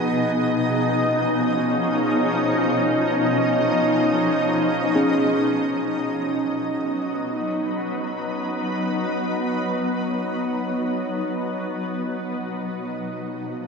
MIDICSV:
0, 0, Header, 1, 3, 480
1, 0, Start_track
1, 0, Tempo, 500000
1, 13123, End_track
2, 0, Start_track
2, 0, Title_t, "Synth keys"
2, 0, Program_c, 0, 88
2, 0, Control_c, 0, 64, 127
2, 0, Note_on_c, 0, 75, 69
2, 1154, Note_off_c, 0, 75, 0
2, 4755, Note_on_c, 0, 68, 63
2, 4759, Note_on_c, 0, 61, 77
2, 5530, Control_c, 0, 64, 0
2, 6058, Note_off_c, 0, 68, 0
2, 6918, Note_off_c, 0, 61, 0
2, 11858, Control_c, 0, 64, 127
2, 13123, End_track
3, 0, Start_track
3, 0, Title_t, "Ambient pad"
3, 0, Program_c, 1, 92
3, 0, Note_on_c, 1, 47, 92
3, 0, Note_on_c, 1, 53, 86
3, 0, Note_on_c, 1, 59, 87
3, 0, Note_on_c, 1, 63, 85
3, 0, Note_on_c, 1, 68, 61
3, 0, Note_on_c, 1, 75, 76
3, 173, Note_on_c, 1, 61, 87
3, 1632, Note_off_c, 1, 59, 0
3, 5495, Note_off_c, 1, 47, 0
3, 5509, Note_off_c, 1, 53, 0
3, 5533, Note_on_c, 1, 54, 71
3, 5827, Note_on_c, 1, 59, 73
3, 5920, Note_on_c, 1, 71, 70
3, 6550, Note_off_c, 1, 68, 0
3, 7974, Note_off_c, 1, 61, 0
3, 11665, Note_on_c, 1, 47, 84
3, 11670, Note_off_c, 1, 54, 0
3, 11678, Note_off_c, 1, 71, 0
3, 11679, Note_off_c, 1, 59, 0
3, 12057, Note_on_c, 1, 53, 71
3, 12401, Note_on_c, 1, 58, 78
3, 13123, Note_off_c, 1, 47, 0
3, 13123, Note_off_c, 1, 53, 0
3, 13123, Note_off_c, 1, 58, 0
3, 13123, Note_off_c, 1, 63, 0
3, 13123, Note_off_c, 1, 75, 0
3, 13123, End_track
0, 0, End_of_file